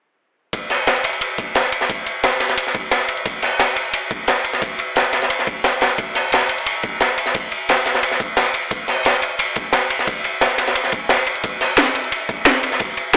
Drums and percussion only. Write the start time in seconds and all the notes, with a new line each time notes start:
0.53 kick, closed hi-hat, ride
0.70 snare, closed hi-hat, open hi-hat
0.87 snare, closed hi-hat, ride
0.96 closed hi-hat
1.04 closed hi-hat, ride
1.13 closed hi-hat
1.21 closed hi-hat, ride
1.38 kick, closed hi-hat, ride
1.55 snare, closed hi-hat, ride
1.72 closed hi-hat, ride
1.81 snare, closed hi-hat
1.90 kick, closed hi-hat, ride
2.06 closed hi-hat, ride
2.24 snare, closed hi-hat, ride
2.33 closed hi-hat
2.40 snare, closed hi-hat, ride
2.49 snare, closed hi-hat
2.58 closed hi-hat, ride
2.67 snare
2.74 kick, closed hi-hat, ride
2.91 snare, closed hi-hat, ride
3.01 ride
3.09 closed hi-hat, ride
3.17 closed hi-hat
3.26 kick, closed hi-hat, ride
3.42 snare, closed hi-hat, open hi-hat
3.59 snare, closed hi-hat, ride
3.68 closed hi-hat
3.76 closed hi-hat, ride
3.85 closed hi-hat
3.94 closed hi-hat, ride
4.11 kick, closed hi-hat, ride
4.28 snare, closed hi-hat, ride
4.44 closed hi-hat, ride
4.53 snare, closed hi-hat
4.62 kick, closed hi-hat, ride
4.79 closed hi-hat, ride
4.96 snare, closed hi-hat, ride
5.04 closed hi-hat
5.13 snare, closed hi-hat, ride
5.22 snare, closed hi-hat
5.30 closed hi-hat, ride
5.39 snare
5.47 kick, closed hi-hat, ride
5.64 snare, closed hi-hat, ride
5.72 ride
5.81 snare, closed hi-hat, ride
5.90 closed hi-hat
5.98 kick, closed hi-hat, ride
6.15 snare, closed hi-hat, open hi-hat
6.32 snare, closed hi-hat, ride
6.41 closed hi-hat
6.49 closed hi-hat, ride
6.58 closed hi-hat
6.66 closed hi-hat, ride
6.83 kick, closed hi-hat, ride
7.01 snare, closed hi-hat, ride
7.18 closed hi-hat, ride
7.26 snare, closed hi-hat
7.35 kick, closed hi-hat, ride
7.52 closed hi-hat, ride
7.69 snare, closed hi-hat, ride
7.78 closed hi-hat
7.86 snare, closed hi-hat, ride
7.94 snare, closed hi-hat
8.03 closed hi-hat, ride
8.11 snare
8.20 kick, closed hi-hat, ride
8.37 snare, closed hi-hat, ride
8.46 ride
8.54 closed hi-hat, ride
8.63 closed hi-hat
8.71 kick, closed hi-hat, ride
8.88 snare, closed hi-hat, open hi-hat
9.05 snare, closed hi-hat, ride
9.14 closed hi-hat
9.22 closed hi-hat, ride
9.31 closed hi-hat
9.39 closed hi-hat, ride
9.56 kick, closed hi-hat, ride
9.73 snare, closed hi-hat, ride
9.90 closed hi-hat, ride
9.99 snare, closed hi-hat
10.07 kick, closed hi-hat, ride
10.24 closed hi-hat, ride
10.41 snare, closed hi-hat, ride
10.50 closed hi-hat
10.58 snare, closed hi-hat, ride
10.67 snare, closed hi-hat
10.75 closed hi-hat, ride
10.84 snare, closed hi-hat
10.92 kick, closed hi-hat, ride
11.09 snare, closed hi-hat, ride
11.19 ride
11.27 closed hi-hat, ride
11.36 closed hi-hat
11.44 kick, closed hi-hat, ride
11.61 snare, closed hi-hat, open hi-hat
11.78 snare, closed hi-hat, ride
11.87 closed hi-hat
11.95 closed hi-hat, ride
12.04 closed hi-hat
12.12 closed hi-hat, ride
12.29 kick, closed hi-hat, ride
12.45 snare, closed hi-hat, ride
12.63 closed hi-hat, ride
12.72 snare, closed hi-hat
12.80 kick, closed hi-hat, ride
12.97 closed hi-hat, ride